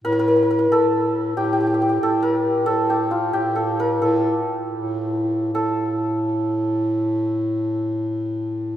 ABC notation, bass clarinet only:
X:1
M:6/8
L:1/8
Q:3/8=85
K:none
V:1 name="Bass clarinet" clef=bass
A,,3 A,,3 | A,,3 A,,3 | A,,3 A,,3 | A,,2 z A,,3 |
A,,6- | A,,6 |]